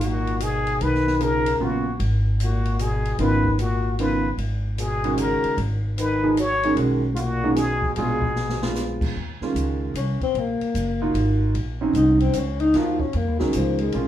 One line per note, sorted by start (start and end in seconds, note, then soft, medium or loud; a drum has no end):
0.00 0.77 G#1 medium
0.00 0.42 A#2 medium
0.00 0.72 F#3 medium
0.00 0.72 A#3 medium
0.00 0.72 D#4 medium
0.00 0.72 G#4 medium
0.00 hi-hat pedal medium
0.00 ride medium
0.05 0.45 F#4 medium
0.27 ride soft
0.40 0.82 B2 medium
0.40 0.84 G#4 medium
0.40 hi-hat pedal medium
0.40 ride medium
0.67 ride soft
0.81 1.57 B1 medium
0.81 1.24 D#3 medium
0.81 1.24 B4 loud
0.81 ride medium
0.95 snare soft
1.07 snare soft
1.20 1.63 C#3 medium
1.20 1.43 F3 medium
1.20 1.44 A#3 medium
1.20 1.44 D#4 soft
1.20 1.44 G#4 medium
1.20 1.65 A#4 loud
1.20 hi-hat pedal soft
1.20 ride medium
1.46 ride medium
1.60 1.97 A#1 medium
1.60 1.94 A#2 medium
1.60 1.83 C#3 medium
1.60 1.84 F#3 medium
1.60 1.83 B3 medium
1.60 1.84 F4 medium
1.60 1.95 F#4 medium
2.00 3.15 G#1 medium
2.00 ride medium
2.40 2.81 A#2 medium
2.40 2.83 F#4 medium
2.40 hi-hat pedal medium
2.40 ride medium
2.65 ride soft
2.79 3.18 B2 medium
2.79 3.20 G#4 medium
2.79 hi-hat pedal medium
2.79 ride medium
3.05 ride soft
3.19 4.34 G#1 medium
3.19 3.43 C#3 medium
3.19 3.56 D#3 medium
3.19 3.43 F#3 medium
3.19 3.43 B3 medium
3.19 3.43 F4 medium
3.19 3.57 B4 loud
3.19 ride medium
3.45 kick soft
3.58 3.96 A#2 medium
3.58 3.96 F#4 medium
3.58 hi-hat pedal medium
3.58 ride medium
3.98 4.23 C#3 medium
3.98 4.29 D#3 medium
3.98 4.23 F#3 medium
3.98 4.23 B3 medium
3.98 4.23 F4 medium
3.98 4.30 B4 medium
3.98 ride medium
4.37 5.39 G#1 medium
4.37 ride medium
4.78 5.19 B2 medium
4.78 5.22 G#4 medium
4.78 hi-hat pedal medium
4.78 ride medium
5.04 5.55 D#3 medium
5.04 5.55 G#3 medium
5.04 5.55 C#4 medium
5.04 5.55 F#4 medium
5.04 ride soft
5.17 5.57 C#3 medium
5.17 5.59 A#4 loud
5.17 hi-hat pedal medium
5.17 ride medium
5.44 muted upright bass stroke soft
5.44 ride soft
5.57 6.73 G#1 medium
5.57 ride medium
5.98 6.35 D#3 medium
5.98 6.35 B4 medium
5.98 hi-hat pedal medium
5.98 ride medium
6.23 6.36 F3 medium
6.23 6.36 A#3 medium
6.23 6.36 D#4 medium
6.23 6.36 G#4 medium
6.37 6.75 F#3 medium
6.37 6.76 C#5 loud
6.37 hi-hat pedal medium
6.37 ride medium
6.63 6.75 D#3 medium
6.63 6.75 G#3 medium
6.63 6.76 C#4 medium
6.63 6.76 D#4 medium
6.63 ride soft
6.76 7.92 B1 medium
6.76 7.00 D#3 medium
6.76 7.00 G#3 medium
6.76 7.00 C#4 medium
6.76 7.00 F#4 medium
6.76 ride medium
7.13 7.19 G#2 medium
7.13 7.19 F4 medium
7.13 hi-hat pedal medium
7.13 ride medium
7.17 7.58 A#2 medium
7.17 7.58 F#4 loud
7.43 7.56 D#3 medium
7.43 7.55 G#3 medium
7.43 7.56 C#4 medium
7.43 7.56 D#4 medium
7.56 7.95 B2 medium
7.56 7.95 G#4 loud
7.56 snare soft
7.56 hi-hat pedal medium
7.56 ride medium
7.82 kick medium
7.95 8.98 A#1 medium
7.95 8.72 B2 medium
7.95 8.20 G#3 medium
7.95 8.20 B3 medium
7.95 8.20 D4 medium
7.95 8.20 F4 medium
7.95 8.71 G#4 medium
7.95 ride medium
8.22 kick soft
8.36 snare soft
8.49 snare medium
8.62 9.13 G#3 medium
8.62 9.13 B3 medium
8.62 9.13 D4 medium
8.62 9.13 F4 medium
8.62 snare medium
8.75 snare medium
8.75 hi-hat pedal medium
9.01 9.14 A#2 medium
9.01 kick medium
9.01 crash medium
9.16 9.40 D#2 medium
9.41 9.93 D#3 medium
9.41 9.93 G#3 medium
9.41 9.93 C#4 medium
9.41 9.93 F4 medium
9.41 muted upright bass stroke soft
9.41 snare soft
9.54 9.93 C#2 medium
9.54 hi-hat pedal soft
9.54 ride medium
9.94 10.19 C2 medium
9.94 10.20 C#4 medium
9.94 hi-hat pedal medium
9.94 ride medium
10.21 10.40 C4 medium
10.21 muted upright bass stroke soft
10.21 kick soft
10.21 ride soft
10.34 10.59 A#1 medium
10.34 ride soft
10.39 11.17 A#3 medium
10.61 muted upright bass stroke soft
10.61 ride soft
10.74 11.13 F#1 medium
10.74 hi-hat pedal medium
10.74 ride medium
11.02 11.52 A#3 medium
11.02 11.53 D#4 medium
11.02 11.53 F4 medium
11.02 11.53 F#4 medium
11.14 11.53 G#1 medium
11.14 ride medium
11.54 11.93 A#1 medium
11.54 ride medium
11.81 12.32 F#3 medium
11.81 12.32 C4 medium
11.81 12.32 C#4 medium
11.81 12.32 D#4 medium
11.93 12.33 C2 medium
11.93 12.21 D#4 medium
11.93 hi-hat pedal medium
11.93 ride medium
12.20 12.39 C4 medium
12.20 ride soft
12.33 12.73 C#2 medium
12.33 hi-hat pedal medium
12.33 ride medium
12.38 12.62 C#4 medium
12.60 12.79 D#4 loud
12.60 ride soft
12.74 13.13 D#2 medium
12.74 12.98 F3 medium
12.74 12.98 A#3 medium
12.74 12.98 D#4 medium
12.74 13.02 F4 medium
12.74 12.98 F#4 medium
12.74 snare soft
12.74 ride medium
13.00 13.17 C#4 medium
13.00 kick soft
13.13 13.28 F2 medium
13.13 13.38 A#3 medium
13.13 ride medium
13.28 13.40 D#2 medium
13.39 13.53 C#2 medium
13.39 13.91 D#3 medium
13.39 13.57 F#3 medium
13.39 13.91 G#3 medium
13.39 13.91 C#4 medium
13.39 13.92 D#4 medium
13.39 snare soft
13.53 13.93 C#2 medium
13.53 13.82 F3 medium
13.53 hi-hat pedal medium
13.53 ride medium
13.79 14.08 G#3 medium
13.79 ride soft
13.92 14.08 A#1 medium
13.92 14.08 D#3 medium
13.92 14.08 G#3 medium
13.92 14.08 C#4 medium
13.92 14.08 F4 medium
13.92 ride medium